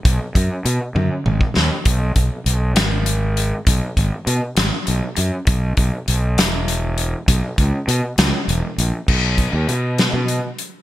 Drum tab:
CC |------------|------------|------------|------------|
HH |x-x-x-------|x-x-x-x-x-x-|x-x-x-x-x-x-|x-x-x-x-x-x-|
SD |----------o-|------o-----|------o-----|------o-----|
T1 |------o-----|------------|------------|------------|
T2 |--------o---|------------|------------|------------|
BD |o-o------o--|o-o---------|o-o---------|o-o---------|

CC |------------|x-----------|
HH |x-x-x-x-x-x-|--x-x-x-x-x-|
SD |------o-----|------o-----|
T1 |------------|------------|
T2 |------------|------------|
BD |o-o---------|o-o---------|